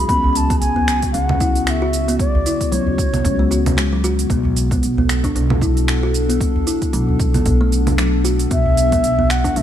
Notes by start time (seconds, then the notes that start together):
Already playing: C#3 B3 F#4 G#4
0.07 C#2 B3 B5, kick, open hi-hat, shaker
0.24 udu
0.33 A5 B5, open hi-hat, shaker
0.50 B3, kick, open hi-hat, shaker
0.60 C#2 G#5, open hi-hat, shaker
0.76 B3, udu
0.88 finger snap, open hi-hat, shaker
1.02 kick, open hi-hat, shaker
1.12 C#2 C#4 F#5, open hi-hat, shaker
1.29 low conga
1.40 E4, kick, open hi-hat, shaker
1.55 open hi-hat, shaker
1.65 F#5, finger snap, open hi-hat, shaker
1.70 E5
1.82 F#4
1.93 open hi-hat, shaker
2.08 B3, open hi-hat, shaker
2.19 D5, kick, open hi-hat, shaker
2.35 udu
2.46 E4, open hi-hat, shaker
2.61 kick, open hi-hat, shaker
2.72 C#2 F#3 C#5, open hi-hat, shaker
2.87 udu
2.98 kick, open hi-hat, shaker
3.13 B3, open hi-hat, low conga, shaker
3.25 C#2, kick, open hi-hat, shaker
3.39 G#3
3.51 F#4, open hi-hat, shaker
3.66 open hi-hat, low conga, shaker
3.77 G#3, finger snap, open hi-hat, shaker
3.93 F#3
4.04 F#4, open hi-hat, shaker
4.19 open hi-hat, shaker
4.29 B1 B2 B3, kick, open hi-hat, shaker
4.45 udu
4.53 A4, open hi-hat
4.57 shaker
4.65 D4
4.71 B3, kick, open hi-hat, shaker
4.83 B1, open hi-hat, shaker
4.97 B3, udu
5.09 finger snap, open hi-hat, shaker
5.24 D4, kick, open hi-hat, shaker
5.35 B1 D4, open hi-hat, shaker
5.50 low conga
5.62 E4, kick, open hi-hat, shaker
5.77 open hi-hat, shaker
5.88 finger snap, open hi-hat, shaker
6.03 F#4
6.14 open hi-hat, shaker
6.29 B3, open hi-hat, shaker
6.41 kick, open hi-hat, shaker
6.56 udu
6.67 E4, open hi-hat, shaker
6.82 kick, open hi-hat, shaker
6.93 B1 F#3, open hi-hat, shaker
7.09 udu
7.20 kick, open hi-hat, shaker
7.34 B3, open hi-hat, low conga, shaker
7.46 B1, kick, open hi-hat, shaker
7.61 A3
7.72 open hi-hat, shaker
7.87 open hi-hat, low conga, shaker
7.98 F#3, finger snap, open hi-hat, shaker
8.25 F#4, open hi-hat, shaker
8.39 open hi-hat, shaker
8.51 B1 B3 E5, kick, open hi-hat, shaker
8.66 udu
8.77 open hi-hat, shaker
8.92 B3, kick, open hi-hat, shaker
9.04 B1, open hi-hat, shaker
9.18 B3, udu
9.30 F#5, finger snap, open hi-hat, shaker
9.44 D4, kick, open hi-hat, shaker
9.56 B1 D4 E5, open hi-hat, shaker